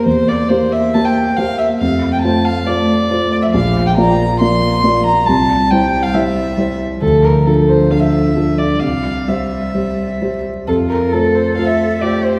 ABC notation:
X:1
M:4/4
L:1/16
Q:1/4=136
K:F
V:1 name="Violin"
c2 d2 c2 e2 a g3 f2 e2 | f3 g a2 f2 d6 d e | f3 g b4 c'6 b2 | a4 g3 f e6 z2 |
A2 B2 A2 c2 f e4- e d2 | f4 e8- e2 z2 | A2 B2 A2 c2 f e3 d2 c2 |]
V:2 name="Grand piano"
E,,4 [B,Gc]4 [B,Gc]4 [B,Gc]4 | F,,4 [A,Fc]4 [A,Fc]4 [A,Fc]4 | B,,,4 [B,Fd]4 [B,Fd]4 [B,Fd]4 | C,,4 [G,Ec]4 [G,Ec]4 [G,Ec]4 |
D,,4 [F,DA]4 [F,DA]4 [F,DA]4 | C,,4 [G,Gc]4 [G,Gc]4 [G,Gc]4 | F,,4 [A,Fc]4 [A,Fc]4 [A,Fc]4 |]
V:3 name="Cello"
B,16 | A,16 | F,16 | G,16 |
F,16 | G,12- G,2 z2 | F4 A8 G4 |]